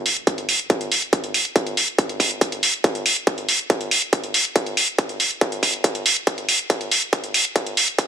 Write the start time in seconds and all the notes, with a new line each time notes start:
0.06 open hi-hat
0.17 closed hi-hat
0.27 kick, closed hi-hat
0.38 closed hi-hat
0.49 open hi-hat
0.59 closed hi-hat
0.70 kick, closed hi-hat
0.81 closed hi-hat
0.92 open hi-hat
1.02 closed hi-hat
1.13 kick, closed hi-hat
1.24 closed hi-hat
1.34 open hi-hat
1.45 closed hi-hat
1.56 kick, closed hi-hat
1.67 closed hi-hat
1.77 open hi-hat
1.88 closed hi-hat
1.99 kick, closed hi-hat
2.09 closed hi-hat
2.20 kick, open hi-hat
2.31 closed hi-hat
2.41 kick, closed hi-hat
2.52 closed hi-hat
2.63 open hi-hat
2.74 closed hi-hat
2.84 kick, closed hi-hat
2.95 closed hi-hat
3.06 open hi-hat
3.16 closed hi-hat
3.27 kick, closed hi-hat
3.38 closed hi-hat
3.49 open hi-hat
3.59 closed hi-hat
3.70 kick, closed hi-hat
3.81 closed hi-hat
3.91 open hi-hat
4.02 closed hi-hat
4.13 kick, closed hi-hat
4.24 closed hi-hat
4.34 open hi-hat
4.45 closed hi-hat
4.56 kick, closed hi-hat
4.66 closed hi-hat
4.77 open hi-hat
4.88 closed hi-hat
4.99 kick, closed hi-hat
5.09 closed hi-hat
5.20 open hi-hat
5.31 closed hi-hat
5.41 kick, closed hi-hat
5.52 closed hi-hat
5.63 kick, open hi-hat
5.74 closed hi-hat
5.84 kick, closed hi-hat
5.95 closed hi-hat
6.06 open hi-hat
6.16 closed hi-hat
6.27 kick, closed hi-hat
6.38 closed hi-hat
6.49 open hi-hat
6.59 closed hi-hat
6.70 kick, closed hi-hat
6.81 closed hi-hat
6.92 open hi-hat
7.02 closed hi-hat
7.13 kick, closed hi-hat
7.24 closed hi-hat
7.34 open hi-hat
7.45 closed hi-hat
7.56 kick, closed hi-hat
7.67 closed hi-hat
7.77 open hi-hat
7.88 closed hi-hat
7.99 kick, closed hi-hat